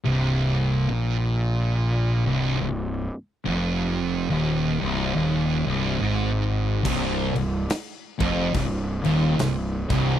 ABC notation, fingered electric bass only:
X:1
M:4/4
L:1/8
Q:"Swing" 1/4=71
K:Cm
V:1 name="Fingered electric bass" clef=bass
C,,,2 B,,,3 C,,, C,,, z | F,,,2 E,,, C,,, E,,, C,,, A,,,2 | C,,, C,,, z F,,, C,,, E,,, C,,, C,,, |]